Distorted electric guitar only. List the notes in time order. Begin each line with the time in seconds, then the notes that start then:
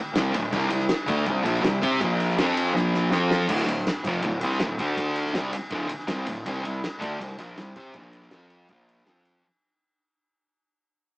0.16 C3 G3 C4
0.34 D2 A2
0.51 C3 G3 C4
0.69 C3 G3
1.06 D3 A3 D4
1.25 C3 G3
1.43 A#2 F3 A#3
1.62 C3 G3
1.82 C4 G4 C5
2.00 A#2 F3 A#3
2.38 F3 C4 F4
2.73 A#2 F3 A#3
3.12 F3 C4 F4
3.48 D2 A2 D3
3.69 D2 A2
4.06 F2 C3 F3
4.25 D2 A2
4.43 C3 G3 C4
4.63 D2 A2
4.79 D3 A3 D4
5.35 C3 G3 C4
5.53 muted distorted electric guitar stroke
5.72 D2 A2 D3
5.89 muted distorted electric guitar stroke
6.07 C3 G3 C4
6.26 D2 A2
6.46 C3 G3 C4
6.65 C3 G3
6.99 D3 A3 D4
7.19 C3 G3
7.39 A#2 F3 A#3
7.58 C3 G3
7.77 C4 G4 C5
7.96 A#2 F3 A#3
8.32 F3 C4 F4
8.69 A#2 F3 A#3
9.06 F3 C4 F4